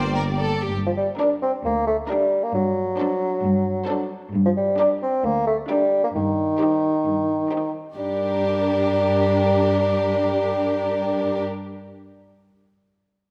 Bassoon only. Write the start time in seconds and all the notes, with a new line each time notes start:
0.86 F3
0.97 G3
1.19 D4
1.42 C4
1.65 A#3
1.87 A3
2.09 G3
2.43 A#3
2.55 F#3
4.45 F3
4.56 G3
4.79 D4
5.03 C4
5.25 A#3
5.47 A3
5.70 G3
6.04 A#3
6.15 D#3
7.97 G3